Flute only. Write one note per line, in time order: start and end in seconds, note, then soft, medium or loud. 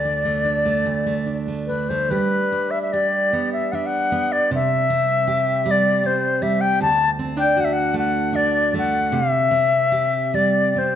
0.00 1.37 D5 medium
1.67 1.91 B4 medium
1.89 2.12 C5 medium
2.10 2.72 B4 medium
2.71 2.82 E5 medium
2.82 2.94 E5 soft
2.93 3.52 D5 medium
3.53 3.73 E5 medium
3.72 3.88 E5 medium
3.72 3.76 F#5 medium
3.86 4.34 F#5 medium
4.32 4.51 D5 medium
4.55 5.72 E5 medium
5.71 6.08 D5 medium
6.06 6.44 C5 medium
6.42 6.62 E5 medium
6.61 6.80 G5 medium
6.82 7.10 A5 medium
7.39 7.62 G5 medium
7.60 7.66 F#5 medium
7.65 7.75 E5 medium
7.73 7.96 F#5 medium
7.99 8.37 F#5 medium
8.36 8.74 D5 medium
8.78 9.16 F#5 medium
9.15 10.36 E5 medium
10.35 10.80 D5 medium
10.78 10.95 C5 medium